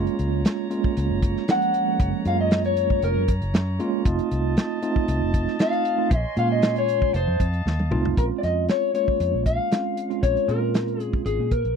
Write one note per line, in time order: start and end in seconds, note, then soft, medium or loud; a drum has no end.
0.00 0.67 G#3 medium
0.00 0.67 A#3 medium
0.00 0.67 C#4 medium
0.00 0.67 F4 medium
0.00 4.02 C#5 medium
0.00 4.02 A#5 medium
0.07 closed hi-hat soft
0.19 0.43 C#2 medium
0.19 closed hi-hat medium
0.45 snare loud
0.45 closed hi-hat medium
0.70 1.44 G#3 medium
0.70 1.44 A#3 medium
0.70 1.44 C#4 medium
0.70 1.44 F4 loud
0.70 closed hi-hat medium
0.84 kick medium
0.97 1.09 C#2 medium
0.97 closed hi-hat medium
1.10 1.34 F#1 medium
1.22 kick medium
1.22 closed hi-hat medium
1.37 snare soft
1.48 1.85 F3 medium
1.48 1.85 G#3 medium
1.48 1.85 A#3 medium
1.48 1.85 C#4 medium
1.48 2.24 F#5 loud
1.48 snare loud
1.48 closed hi-hat medium
1.62 closed hi-hat soft
1.74 closed hi-hat medium
1.87 2.23 F3 medium
1.87 2.23 G#3 medium
1.87 2.23 A#3 medium
1.87 2.23 C#4 medium
2.00 2.12 F#1 loud
2.00 kick loud
2.00 closed hi-hat medium
2.25 2.99 F#2 medium
2.25 3.23 G#3 medium
2.25 3.23 A#3 medium
2.25 3.23 C#4 medium
2.25 3.23 F4 medium
2.25 2.40 F5 medium
2.25 closed hi-hat medium
2.41 2.65 D#5 medium
2.51 snare loud
2.51 closed hi-hat medium
2.64 3.02 C#5 medium
2.64 closed hi-hat soft
2.77 closed hi-hat medium
2.90 kick medium
3.02 3.15 F1 loud
3.02 3.28 A#4 loud
3.02 closed hi-hat medium
3.16 3.40 F#2 loud
3.28 kick medium
3.28 closed hi-hat medium
3.42 3.53 F#1 medium
3.42 closed hi-hat soft
3.54 3.77 F#2 loud
3.54 snare loud
3.54 closed hi-hat medium
3.79 4.04 G#3 loud
3.79 4.04 A#3 medium
3.79 4.04 C#4 medium
3.79 4.04 F4 loud
3.79 closed hi-hat medium
4.05 4.18 F1 loud
4.05 4.79 A3 medium
4.05 4.79 C4 medium
4.05 4.79 D#4 medium
4.05 4.79 F4 medium
4.05 6.09 D#5 medium
4.05 6.09 A5 medium
4.05 kick loud
4.05 closed hi-hat medium
4.19 closed hi-hat soft
4.31 4.55 C2 medium
4.31 closed hi-hat medium
4.57 snare loud
4.57 closed hi-hat medium
4.82 5.56 A3 medium
4.82 5.56 C4 medium
4.82 5.56 D#4 medium
4.82 5.56 F4 loud
4.82 closed hi-hat medium
4.96 kick medium
5.08 5.21 C2 loud
5.08 closed hi-hat medium
5.22 5.45 F1 medium
5.34 kick medium
5.34 closed hi-hat medium
5.48 snare soft
5.59 5.97 A3 medium
5.59 5.97 C4 medium
5.59 5.97 D#4 medium
5.59 5.97 F4 medium
5.59 6.18 F5 loud
5.59 snare loud
5.59 closed hi-hat medium
5.73 closed hi-hat soft
5.85 closed hi-hat medium
5.98 6.11 A3 medium
5.98 6.11 C4 medium
5.98 6.11 D#4 medium
5.98 6.11 F4 medium
6.11 6.23 A#1 loud
6.11 7.13 C#5 medium
6.11 7.13 G#5 medium
6.11 7.13 C6 medium
6.11 kick loud
6.11 closed hi-hat medium
6.18 6.36 D#5 loud
6.36 7.10 A#2 loud
6.36 7.14 G#3 medium
6.36 7.14 A#3 medium
6.36 7.14 C#4 medium
6.36 7.14 F4 medium
6.36 6.51 F5 medium
6.36 closed hi-hat medium
6.52 6.76 D#5 medium
6.62 snare loud
6.62 closed hi-hat medium
6.76 7.14 C#5 medium
6.76 closed hi-hat soft
6.89 closed hi-hat medium
7.02 kick medium
7.14 7.26 F1 loud
7.14 7.40 C5 loud
7.14 8.16 D#5 medium
7.14 8.16 F5 medium
7.14 8.16 A5 medium
7.14 closed hi-hat medium
7.27 7.39 F2 loud
7.40 7.63 F2 loud
7.40 kick medium
7.40 closed hi-hat medium
7.54 closed hi-hat soft
7.66 7.89 D#2 medium
7.66 snare medium
7.79 high tom medium
7.91 8.15 C2 medium
7.91 8.16 A3 loud
7.91 8.16 C4 medium
7.91 8.16 D#4 medium
7.91 8.16 F4 loud
7.91 mid tom medium
8.05 floor tom medium
8.16 8.29 A#1 loud
8.16 8.90 G#3 medium
8.16 8.90 C4 medium
8.16 8.90 C#4 medium
8.16 8.90 F4 medium
8.16 8.23 A#4 medium
8.16 kick loud
8.16 closed hi-hat medium
8.38 8.44 D5 medium
8.43 8.67 F2 medium
8.43 8.69 D#5 medium
8.43 snare soft
8.43 closed hi-hat medium
8.69 8.93 C#5 medium
8.69 snare loud
8.69 closed hi-hat medium
8.94 9.67 G#3 medium
8.94 9.67 A#3 medium
8.94 9.67 C#4 medium
8.94 9.67 F4 medium
8.94 9.42 C#5 medium
8.94 closed hi-hat medium
9.08 kick medium
9.20 9.32 F2 medium
9.20 closed hi-hat medium
9.34 9.57 A#1 medium
9.46 10.25 F5 medium
9.46 kick medium
9.46 closed hi-hat medium
9.71 10.08 G#3 medium
9.71 10.08 C4 medium
9.71 10.08 C#4 medium
9.71 10.08 F4 medium
9.71 snare loud
9.71 closed hi-hat medium
9.97 closed hi-hat medium
10.10 10.46 G#3 medium
10.10 10.46 C4 medium
10.10 10.46 C#4 medium
10.10 10.46 F4 medium
10.10 closed hi-hat soft
10.23 10.35 A#1 medium
10.23 10.49 C#5 medium
10.23 kick loud
10.23 closed hi-hat medium
10.37 closed hi-hat soft
10.48 11.22 A#2 loud
10.48 11.46 G#3 medium
10.48 11.46 C4 medium
10.48 11.46 C#4 medium
10.48 11.46 F4 medium
10.48 11.02 A#4 medium
10.48 closed hi-hat medium
10.74 snare loud
10.74 closed hi-hat medium
10.88 closed hi-hat soft
11.00 11.22 G#4 medium
11.00 closed hi-hat medium
11.13 kick medium
11.25 11.38 G#1 loud
11.25 11.50 G#4 medium
11.25 closed hi-hat medium
11.39 11.62 A#2 medium
11.51 11.76 A#4 medium
11.51 kick medium
11.51 closed hi-hat medium
11.65 11.76 A#1 medium
11.65 closed hi-hat soft